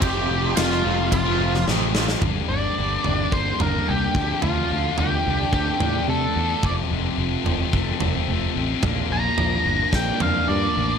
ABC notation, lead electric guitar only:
X:1
M:4/4
L:1/8
Q:1/4=109
K:Gm
V:1 name="Lead electric guitar"
[Gg]2 [Ff]2 [Ff]2 z2 | z d3 c B G2 | F2 G2 G2 A2 | d z6 z |
z b3 g f d2 |]